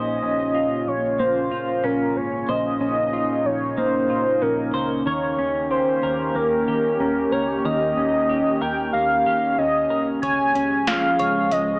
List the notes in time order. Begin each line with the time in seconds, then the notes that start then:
Already playing: A#1 A#2 C#3 A#3 C#4 F4 C5 D#5
0.23 A#1 C#4
0.54 F4
0.87 A#1 C#5
1.19 A#1 A#3 C5
1.51 A#2 F4
1.84 A#1 C#4 A#4
2.16 G#1 C#5
2.48 A#1 A#2 D#4 C5 D#5
2.81 A#1 C#4
3.13 F4
3.45 A#1 C#5
3.77 A#1 A#3 C5
4.10 A#2 F4
4.42 A#1 C#4 A#4
4.74 C#2 C5
5.06 D#2 D#3 C#4 G4 A#4 C#5
5.38 D#2 C#4
5.71 G4 C5
6.03 D#2 A#4
6.35 D#2 A#3 A#4
6.68 D#3 G4
7.00 D#2 C#4 A#4
7.32 C#2 A#4 C#5
7.64 D#2 D#3 A#4 D#5
7.97 D#2 C#4
8.29 G4
8.61 D#2 A#4 G5
8.93 D#2 A#3 F5
9.26 D#3 G4
9.58 D#2 C#4 D#5
9.90 C2 A#4
10.22 C#2 F3 G#3 G#4 C#5 G#5, kick, closed hi-hat
10.55 C#2 C#4, closed hi-hat
10.87 F4 F5, snare, closed hi-hat
11.19 C#2 C#5, closed hi-hat
11.51 C#2 G#3 D#5, closed hi-hat